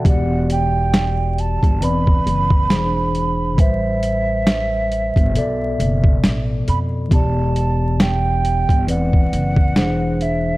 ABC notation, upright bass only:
X:1
M:4/4
L:1/16
Q:"Swing 16ths" 1/4=68
K:Em
V:1 name="Upright bass" clef=bass
E,,,6- E,,, G,,, E,,,2 F,,,2 E,,,4 | A,,,6- A,,, G,,, B,,,2 F,,,2 A,,,2 =F,,2 | E,,,6- E,,, G,,, E,,,2 F,,,2 E,,,4 |]